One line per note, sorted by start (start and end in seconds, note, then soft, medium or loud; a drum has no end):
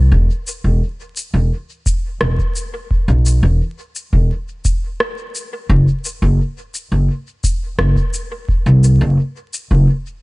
0.12 0.27 E1 medium
0.12 kick loud
0.47 shaker soft
0.64 0.79 E1 medium
0.64 kick medium
1.17 shaker medium
1.34 1.49 E1 medium
1.86 kick loud
1.86 shaker soft
2.21 2.36 E1 medium
2.21 cross-stick medium
2.39 kick loud
2.56 shaker soft
2.91 kick loud
3.08 3.39 B1 medium
3.26 shaker soft
3.43 3.58 E1 medium
3.96 shaker soft
4.13 4.28 E1 medium
4.13 kick loud
4.65 kick loud
4.65 shaker soft
5.00 cross-stick medium
5.35 shaker soft
5.70 5.85 F#1 loud
5.70 kick loud
6.05 shaker soft
6.22 6.37 F#1 medium
6.22 kick medium
6.74 shaker medium
6.92 7.07 F#1 medium
7.44 kick loud
7.44 shaker soft
7.78 7.94 F#1 loud
7.78 cross-stick medium
7.96 kick loud
8.14 shaker medium
8.49 kick loud
8.66 8.97 C2 medium
8.84 shaker medium
9.01 9.16 F#1 medium
9.54 shaker medium
9.71 9.86 F#1 medium
9.71 kick loud